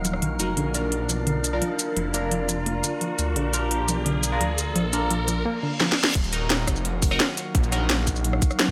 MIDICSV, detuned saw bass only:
0, 0, Header, 1, 2, 480
1, 0, Start_track
1, 0, Key_signature, -6, "minor"
1, 0, Tempo, 348837
1, 784, Time_signature, 4, 2, 24, 8
1, 11988, End_track
2, 0, Start_track
2, 0, Title_t, "Detuned saw bass"
2, 0, Program_c, 0, 39
2, 0, Note_on_c, 0, 27, 95
2, 286, Note_off_c, 0, 27, 0
2, 305, Note_on_c, 0, 34, 92
2, 526, Note_off_c, 0, 34, 0
2, 545, Note_on_c, 0, 29, 96
2, 766, Note_off_c, 0, 29, 0
2, 785, Note_on_c, 0, 34, 92
2, 1486, Note_off_c, 0, 34, 0
2, 1505, Note_on_c, 0, 35, 104
2, 2206, Note_off_c, 0, 35, 0
2, 2705, Note_on_c, 0, 29, 94
2, 3886, Note_off_c, 0, 29, 0
2, 4385, Note_on_c, 0, 38, 102
2, 4606, Note_off_c, 0, 38, 0
2, 4625, Note_on_c, 0, 34, 93
2, 5326, Note_off_c, 0, 34, 0
2, 5345, Note_on_c, 0, 35, 104
2, 6046, Note_off_c, 0, 35, 0
2, 6065, Note_on_c, 0, 38, 96
2, 6526, Note_off_c, 0, 38, 0
2, 6544, Note_on_c, 0, 34, 97
2, 7005, Note_off_c, 0, 34, 0
2, 7025, Note_on_c, 0, 34, 100
2, 7486, Note_off_c, 0, 34, 0
2, 8465, Note_on_c, 0, 27, 92
2, 9166, Note_off_c, 0, 27, 0
2, 9185, Note_on_c, 0, 29, 108
2, 9886, Note_off_c, 0, 29, 0
2, 10385, Note_on_c, 0, 34, 95
2, 11566, Note_off_c, 0, 34, 0
2, 11988, End_track
0, 0, End_of_file